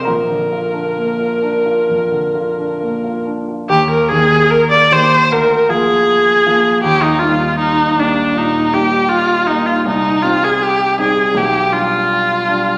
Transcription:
X:1
M:4/4
L:1/16
Q:1/4=78
K:Eb
V:1 name="Viola"
B12- B2 z2 | G B A2 B d c2 B2 A6 | G E F2 E2 D2 E2 G2 F2 E F | E2 F A G2 A2 G2 F6 |]
V:2 name="Grand piano"
[Bb]12- [Bb]2 z2 | z16 | z16 | z16 |]
V:3 name="Grand piano"
B,,, D, F D B, F D F F,, D, F D B, F D F | E,,2 [E,B,G]4 [E,B,G]2 D,,2 [F,B,F]4 [F,B,F]2 | E,,2 [G,B,E]4 [G,B,E]2 B,,2 [G,B,E]4 [G,B,E]2 | C,,2 [G,CE]4 [G,CE]2 =B,,,2 [G,D]4 [G,D]2 |]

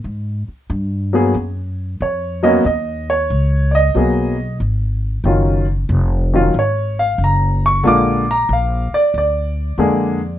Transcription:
X:1
M:4/4
L:1/8
Q:"Swing" 1/4=92
K:Abdor
V:1 name="Grand piano"
z6 d e | e d2 [=de]3 z2 | z4 d f b d' | =d' b f =d d4 |]
V:2 name="Grand piano"
z3 [G,B,CA] z3 [G,B,CD] | z4 [G,B,CA] z3 | [E,G,DF] z2 [E,G,DF] z4 | [=D,A,B,F] z4 z [D,A,B,A] z |]
V:3 name="Upright bass" clef=bass
A,, z =G,,2 _G,,2 F,,2 | E,,2 D,,2 C,,2 A,,,2 | G,,,2 F,,,2 A,,,2 G,,,2 | B,,,2 B,,, z =D,,2 F,,2 |]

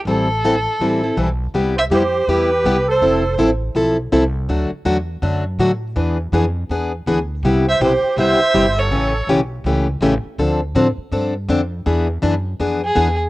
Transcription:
X:1
M:4/4
L:1/16
Q:"Swing" 1/4=163
K:Am
V:1 name="Violin"
A12 z4 | z2 e2 c4 B6 c2- | c4 z12 | z16 |
z16 | z2 e2 c4 e6 ^c2- | ^c4 z12 | z16 |
z8 z2 ^G4 z2 |]
V:2 name="Accordion"
z16 | z2 c2 G4 G6 A2- | A4 z12 | z16 |
z16 | z2 c2 G4 c6 A2- | A4 z12 | z16 |
z16 |]
V:3 name="Steel-string acoustic guitar"
[E,G,CEA]2 z2 [E,G,CEA] z3 [E,G,CEA]2 [CEA]2 [E,G,CEA] z3 | [C,G,B,EG]2 z2 [C,G,B,EG] z3 [C,G,B,EG]2 z2 [C,G,B,EG] z3 | [F,CEA]2 z2 [F,CEA] z3 [F,CEA]2 z2 [F,CEA] z3 | [D,^F,A,D^F]2 z2 [D,F,A,DF] z3 [D,F,A,DF]2 z2 [D,F,A,DF] z3 |
[E,B,D^G]2 z2 [E,B,DG] z3 [E,B,DG]2 z2 [E,B,DG] z3 | [C,G,B,EG]2 z2 [C,G,B,EG] z3 [C,G,B,EG]2 z2 [C,G,B,EG] z3 | [^C,E,A,^CG]2 z2 [C,E,A,CG] z3 [C,E,A,CG]2 z2 [C,E,A,CG] z3 | [D,F,CDA]2 z2 [D,F,CDA] z3 [D,F,CDA]2 z2 [D,F,CDA] z3 |
[E,B,D^G]2 z2 [E,B,DG] z3 [E,B,DG]2 z2 [E,B,DG] z3 |]
V:4 name="Upright bass" clef=bass
A,,,8 A,,,4 B,,,4 | C,,4 F,,4 E,,4 C,,4 | F,,,4 A,,,4 B,,,4 C,,4 | D,,2 z2 E,,4 ^F,,4 A,,4 |
E,,4 F,,4 E,,4 D,,4 | C,,4 B,,,2 z2 C,,2 z2 G,,,4 | A,,,4 B,,,4 ^C,,4 A,,,2 z2 | D,,4 A,,2 z2 G,,4 F,,4 |
E,,4 ^F,,4 =F,,4 E,,4 |]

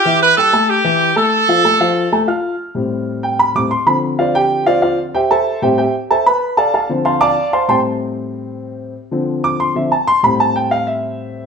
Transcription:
X:1
M:4/4
L:1/8
Q:1/4=188
K:Am
V:1 name="Grand piano"
[E,Ee]2 [G,Gg] [A,Aa]2 [E,Ee]2 [A,Aa]- | [A,Aa] [F,Ff] [A,Aa] [F,Ff]2 [A,Aa] [Fff']2 | z4 g b d' c' | b z [Fcdf] [Gg]2 [Fcdf] [Fcdf] z |
[Gceg] [Acea]2 [Gceg] [Gceg] z [Acea] [Bb]- | [Bb] [Adfa] [Adfa] z [cfac'] [dfad']2 [cfac'] | [cgac'] z6 z | z3 d' c' e a c' |
b a g f e4 |]
V:2 name="Grand piano" clef=bass
z8 | z8 | z [A,,G,C]4- [A,,G,C] [A,,G,C] z | [D,F,C]8 |
z3 [A,,G,C] z4 | z3 [D,F,C]3 z2 | [A,,G,C]8 | z [D,F,C]4 [D,F,C] z2 |
[A,,G,C]8 |]
V:3 name="Horn section"
G B A2 G3 A- | A6 z2 | z8 | z8 |
z8 | z8 | z8 | z8 |
z8 |]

